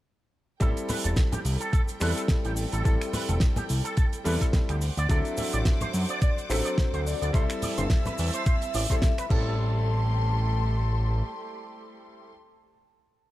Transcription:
0.60 A1 G3 C4 E4 A4 G5, kick, closed hi-hat, cabasa
0.77 closed hi-hat, cabasa
0.89 B4, open hi-hat, low conga, cabasa
1.04 E1 A4, closed hi-hat, cabasa
1.16 kick, snare, closed hi-hat, cabasa
1.32 G4, closed hi-hat, low conga, cabasa
1.45 C2, open hi-hat, cabasa
1.60 A4, closed hi-hat, cabasa
1.73 A4, kick, closed hi-hat, cabasa
1.88 closed hi-hat, cabasa
2.00 E2 G3 C4 E4 A4 B4, finger snap, open hi-hat, cabasa
2.16 A4, closed hi-hat, cabasa
2.28 kick, snare, closed hi-hat, cabasa
2.45 A1 G4, closed hi-hat
2.57 open hi-hat, cabasa
2.72 A1 A4, closed hi-hat, cabasa
2.84 A1 G3 C4 E4 A4, kick, closed hi-hat, cabasa
3.01 finger snap, closed hi-hat, cabasa
3.13 B4, open hi-hat, low conga, cabasa
3.29 E1 A4, closed hi-hat, high conga, cabasa
3.40 kick, snare, closed hi-hat, cabasa
3.56 G4, closed hi-hat, low conga, cabasa
3.69 C2, open hi-hat, cabasa
3.84 A4, closed hi-hat, cabasa
3.97 A4, kick, closed hi-hat, cabasa
4.13 closed hi-hat, cabasa
4.24 E2 G3 C4 E4 A4 B4, open hi-hat, cabasa
4.40 A4, kick, snare, closed hi-hat, cabasa
4.53 kick, snare, closed hi-hat, cabasa
4.69 D2 G4, finger snap, closed hi-hat
4.81 C5 F#5 D6, open hi-hat, cabasa
4.97 D2 D5, closed hi-hat, cabasa
5.09 D2 F#3 C4 D4 A4 D5 E5, kick, closed hi-hat, cabasa
5.25 closed hi-hat, cabasa
5.37 E5, open hi-hat, low conga, cabasa
5.53 A1 D5, closed hi-hat, cabasa
5.65 kick, snare, closed hi-hat, cabasa
5.81 C5, closed hi-hat, low conga, cabasa
5.93 F#2, open hi-hat, cabasa
6.09 D5, closed hi-hat, cabasa
6.22 D5, kick, closed hi-hat, cabasa
6.38 closed hi-hat, cabasa
6.49 A1 F#3 C4 D4 A4 C5 E5, finger snap, open hi-hat, cabasa
6.65 D5, closed hi-hat, cabasa
6.78 kick, snare, closed hi-hat, cabasa
6.94 D2 C5, closed hi-hat
7.07 D5, open hi-hat, cabasa
7.21 D2 D5, closed hi-hat, cabasa
7.33 C2 G3 C4 E4 A4 C5 E5 A5 E6, kick, closed hi-hat, cabasa
7.50 finger snap, closed hi-hat, cabasa
7.62 D5, open hi-hat, low conga, cabasa
7.78 G1 C5, closed hi-hat, high conga, cabasa
7.90 kick, snare, closed hi-hat, cabasa
8.06 B4, closed hi-hat, low conga, cabasa
8.18 E2, open hi-hat, cabasa
8.33 C5, closed hi-hat, cabasa
8.46 C5, kick, closed hi-hat, cabasa
8.62 closed hi-hat, cabasa
8.74 A1 D5, open hi-hat, cabasa
8.90 G3 C4 E4 A4 C5, kick, snare, closed hi-hat, cabasa
9.02 kick, snare, closed hi-hat, cabasa
9.18 B4, finger snap, closed hi-hat, cabasa
9.29 A1 G3 A3 C4 E4 G4 A4 A5 C6, kick, crash

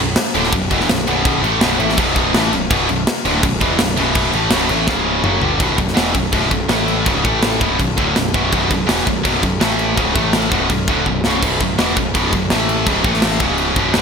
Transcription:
0.00 B0 B1 F#2
0.16 snare, crash
0.35 D1 D2 A2 D3, crash
0.44 snare
0.52 B0 B1 F#2, kick, crash
0.70 E1 E2 B2 E3, kick, crash
0.80 snare
0.89 B0 B1 F#2, snare, crash
1.07 B0 B1 F#2 B2, crash
1.25 kick, crash
1.43 A1 A2 E3 A3, crash
1.61 B0 B1 F#2 B2, snare, crash
1.78 A1 A2 E3 A3, crash
1.89 snare
1.97 B0 B1 F#2 B2, kick, crash
2.16 kick, crash
2.34 A1 A2 E3 A3, snare, crash
2.52 B0 B1 F#2, crash
2.70 B0 B1 F#2 B2, kick, crash
2.89 B0 B1 F#2, crash
3.07 snare, crash
3.25 D1 D2 A2 D3, crash
3.43 B0 B1 F#2, kick, crash
3.61 E1 E2 B2 E3, kick, crash
3.79 B0 B1 F#2, snare, crash
3.97 B0 B1 F#2 B2, crash
4.15 kick, crash
4.33 A1 A2 E3 A3, crash
4.51 B0 B1 F#2 B2, snare, crash
4.69 A1 A2 E3 A3, crash
4.87 C#1 C#2 G#2 C#3, kick, snare
5.23 F#1 F#2 C#3 F#3, mid tom
5.42 G1 G2 D3 G3, floor tom
5.58 B0 B1 F#2 B2, kick, crash
5.77 B0 B1 F#2, kick, crash
5.88 snare
5.95 E1 E2 B2 E3, snare, crash
6.14 B0 B1 F#2, kick, crash
6.32 B0 B1 F#2 B2, kick, crash
6.51 B0 B1 F#2, kick, crash
6.69 A1 A2 E3 A3, snare, crash
6.88 crash
7.05 C#1 C#2 G#2 C#3, kick, crash
7.24 A1 A2 E3 A3, kick, crash
7.43 snare, crash
7.60 B0 B1 F#2 B2, kick, crash
7.79 B0 B1 F#2, kick, crash
7.97 D1 D2 A2 D3, kick, crash
8.16 B0 B1 F#2, snare, crash
8.34 B0 B1 F#2 B2, kick, crash
8.52 B0 B1 F#2 B2, kick, crash
8.70 B0 B1 F#2, kick, crash
8.87 E1 E2 B2 E3, snare, crash
8.98 snare
9.07 B0 B1 F#2, kick, crash
9.24 B0 B1 F#2 B2, kick, crash
9.42 B0 B1 F#2, kick, crash
9.60 A1 A2 E3 A3, snare, crash
9.79 crash
9.96 C#1 C#2 G#2 C#3, kick, crash
10.14 A1 A2 E3 A3, kick, crash
10.33 snare, crash
10.50 B0 B1 F#2 B2, kick, crash
10.70 B0 B1 F#2, kick, crash
10.87 D1 D2 A2 D3, kick, crash
11.06 B0 B1 F#2, kick
11.24 B0 B1 F#2 B2, snare
11.43 B0 B1 F#2 B2, kick, crash
11.61 B0 B1 F#2, kick, crash
11.78 E1 E2 B2 E3, snare, crash
11.97 B0 B1 F#2, kick, crash
12.14 B0 B1 F#2 B2, kick, crash
12.33 B0 B1 F#2, kick, crash
12.50 A1 A2 E3 A3, snare, crash
12.69 crash
12.86 C#1 C#2 G#2 C#3, kick, crash
13.04 A1 A2 E3 A3, kick, crash
13.14 snare
13.22 snare, crash
13.31 snare
13.40 C#1 C#2 G#2 C#3, kick, crash
13.58 crash
13.76 B0 B1 F#2 B2, kick, crash
13.94 D1 D2 A2 D3, snare, crash

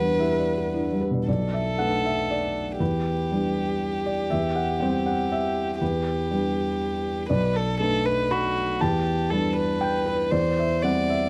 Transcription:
Already playing: E2 G3 B4 F#5
0.02 D4
0.18 E4 G4 E5
0.32 G4
0.39 D5
0.56 G4
0.61 G4
0.74 D4 E4
0.87 B4
0.93 G3
1.01 G4 B4
1.11 B2 D5
1.28 B1 A4 D5
1.53 E5
1.78 A3 D4 B4 F#5
2.05 E5
2.31 D5
2.80 E2 G4 B4
3.32 G3 D4 B4
4.06 D5
4.30 E2 E5
4.55 F#5
4.80 G3 C4 C5 G5
5.06 F#5
5.32 E5
5.81 E2 G4 B4
6.31 G3 D4 B4
7.29 B1 B4 D5
7.56 A4
7.80 A3 D4 A4 B4
8.05 B4
8.31 F#4 B5
8.80 E2 G4 A5
9.30 G3 D4 A4 B4
9.57 B4
9.81 G5
10.06 B4
10.31 E2 C5 D5
10.59 E5
10.82 G3 C4 C5 D5 F#5
11.10 E5

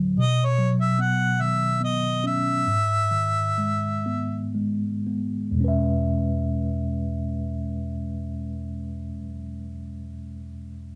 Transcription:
Already playing: D2 A2 D3 F#3
0.18 B2 D#5
0.45 C#5
0.58 F#3
0.81 E5
0.99 B3 F#5
1.40 D#3 E5
1.81 B3 D#5
2.24 C#4 E5
2.67 G#2
3.12 D#3
3.58 G#3
4.06 B3
4.55 G#3
5.07 B3
5.51 E2 B2
5.57 G#3 C#4
5.64 B4 E5

